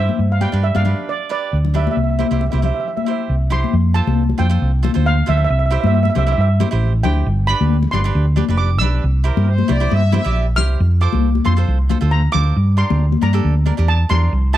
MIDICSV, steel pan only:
0, 0, Header, 1, 2, 480
1, 0, Start_track
1, 0, Key_signature, -1, "major"
1, 0, Tempo, 441826
1, 208, Time_signature, 4, 2, 24, 8
1, 15834, End_track
2, 0, Start_track
2, 0, Title_t, "Steel pan"
2, 0, Program_c, 0, 114
2, 0, Note_on_c, 0, 76, 88
2, 347, Note_on_c, 0, 77, 80
2, 348, Note_off_c, 0, 76, 0
2, 448, Note_on_c, 0, 79, 91
2, 457, Note_off_c, 0, 77, 0
2, 691, Note_on_c, 0, 76, 86
2, 696, Note_off_c, 0, 79, 0
2, 810, Note_off_c, 0, 76, 0
2, 822, Note_on_c, 0, 77, 92
2, 1148, Note_off_c, 0, 77, 0
2, 1186, Note_on_c, 0, 74, 90
2, 1415, Note_off_c, 0, 74, 0
2, 1428, Note_on_c, 0, 74, 88
2, 1912, Note_on_c, 0, 76, 75
2, 1916, Note_off_c, 0, 74, 0
2, 1977, Note_off_c, 0, 76, 0
2, 1990, Note_on_c, 0, 76, 52
2, 2061, Note_off_c, 0, 76, 0
2, 2075, Note_on_c, 0, 76, 66
2, 2120, Note_off_c, 0, 76, 0
2, 2133, Note_on_c, 0, 76, 46
2, 2201, Note_off_c, 0, 76, 0
2, 2214, Note_on_c, 0, 76, 54
2, 2274, Note_off_c, 0, 76, 0
2, 2287, Note_on_c, 0, 76, 47
2, 2362, Note_off_c, 0, 76, 0
2, 2375, Note_on_c, 0, 76, 51
2, 2449, Note_off_c, 0, 76, 0
2, 2462, Note_on_c, 0, 76, 45
2, 2516, Note_off_c, 0, 76, 0
2, 2529, Note_on_c, 0, 76, 53
2, 2609, Note_off_c, 0, 76, 0
2, 2621, Note_on_c, 0, 76, 49
2, 2704, Note_off_c, 0, 76, 0
2, 2725, Note_on_c, 0, 76, 53
2, 2793, Note_off_c, 0, 76, 0
2, 2808, Note_on_c, 0, 76, 46
2, 2872, Note_off_c, 0, 76, 0
2, 2885, Note_on_c, 0, 76, 58
2, 2959, Note_off_c, 0, 76, 0
2, 2984, Note_on_c, 0, 76, 51
2, 3028, Note_off_c, 0, 76, 0
2, 3041, Note_on_c, 0, 76, 53
2, 3110, Note_off_c, 0, 76, 0
2, 3128, Note_on_c, 0, 76, 49
2, 3202, Note_off_c, 0, 76, 0
2, 3224, Note_on_c, 0, 76, 58
2, 3286, Note_off_c, 0, 76, 0
2, 3316, Note_on_c, 0, 76, 52
2, 3371, Note_off_c, 0, 76, 0
2, 3383, Note_on_c, 0, 76, 58
2, 3452, Note_off_c, 0, 76, 0
2, 3826, Note_on_c, 0, 84, 94
2, 4284, Note_on_c, 0, 81, 94
2, 4317, Note_off_c, 0, 84, 0
2, 4767, Note_on_c, 0, 79, 87
2, 4786, Note_off_c, 0, 81, 0
2, 5219, Note_off_c, 0, 79, 0
2, 5500, Note_on_c, 0, 77, 108
2, 5722, Note_off_c, 0, 77, 0
2, 5744, Note_on_c, 0, 76, 96
2, 5822, Note_off_c, 0, 76, 0
2, 5838, Note_on_c, 0, 76, 78
2, 5903, Note_off_c, 0, 76, 0
2, 5916, Note_on_c, 0, 76, 85
2, 5955, Note_off_c, 0, 76, 0
2, 5968, Note_on_c, 0, 76, 66
2, 6055, Note_off_c, 0, 76, 0
2, 6075, Note_on_c, 0, 76, 67
2, 6135, Note_off_c, 0, 76, 0
2, 6148, Note_on_c, 0, 76, 58
2, 6192, Note_off_c, 0, 76, 0
2, 6205, Note_on_c, 0, 76, 73
2, 6294, Note_off_c, 0, 76, 0
2, 6309, Note_on_c, 0, 76, 61
2, 6359, Note_off_c, 0, 76, 0
2, 6372, Note_on_c, 0, 76, 77
2, 6445, Note_off_c, 0, 76, 0
2, 6458, Note_on_c, 0, 76, 64
2, 6540, Note_off_c, 0, 76, 0
2, 6553, Note_on_c, 0, 76, 73
2, 6613, Note_off_c, 0, 76, 0
2, 6627, Note_on_c, 0, 76, 63
2, 6701, Note_off_c, 0, 76, 0
2, 6719, Note_on_c, 0, 76, 82
2, 6795, Note_off_c, 0, 76, 0
2, 6813, Note_on_c, 0, 76, 74
2, 6856, Note_off_c, 0, 76, 0
2, 6869, Note_on_c, 0, 76, 75
2, 6944, Note_off_c, 0, 76, 0
2, 6963, Note_on_c, 0, 76, 73
2, 7038, Note_off_c, 0, 76, 0
2, 7642, Note_on_c, 0, 79, 89
2, 8118, Note_on_c, 0, 83, 105
2, 8142, Note_off_c, 0, 79, 0
2, 8597, Note_on_c, 0, 84, 108
2, 8620, Note_off_c, 0, 83, 0
2, 9050, Note_off_c, 0, 84, 0
2, 9316, Note_on_c, 0, 86, 98
2, 9544, Note_on_c, 0, 88, 108
2, 9547, Note_off_c, 0, 86, 0
2, 10952, Note_off_c, 0, 88, 0
2, 11475, Note_on_c, 0, 89, 113
2, 11927, Note_off_c, 0, 89, 0
2, 11968, Note_on_c, 0, 86, 97
2, 12447, Note_on_c, 0, 84, 86
2, 12462, Note_off_c, 0, 86, 0
2, 12893, Note_off_c, 0, 84, 0
2, 13160, Note_on_c, 0, 82, 101
2, 13386, Note_off_c, 0, 82, 0
2, 13388, Note_on_c, 0, 86, 111
2, 13842, Note_off_c, 0, 86, 0
2, 13882, Note_on_c, 0, 84, 99
2, 14329, Note_off_c, 0, 84, 0
2, 14369, Note_on_c, 0, 82, 92
2, 14813, Note_off_c, 0, 82, 0
2, 15083, Note_on_c, 0, 81, 108
2, 15306, Note_off_c, 0, 81, 0
2, 15316, Note_on_c, 0, 84, 113
2, 15796, Note_on_c, 0, 81, 106
2, 15813, Note_off_c, 0, 84, 0
2, 15834, Note_off_c, 0, 81, 0
2, 15834, End_track
0, 0, End_of_file